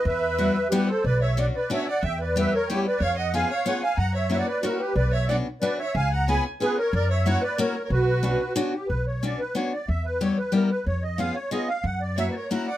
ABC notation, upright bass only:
X:1
M:3/4
L:1/8
Q:1/4=183
K:Em
V:1 name="Upright bass" clef=bass
E,,4 z2 | [K:Bm] B,,,4 z2 | E,,4 z2 | ^E,,4 z2 |
F,,4 z2 | B,,,4 z2 | C,,4 z2 | F,,4 z2 |
B,,,4 z2 | B,,,4 z2 | E,,4 z2 | ^E,,4 z2 |
F,,4 z2 |]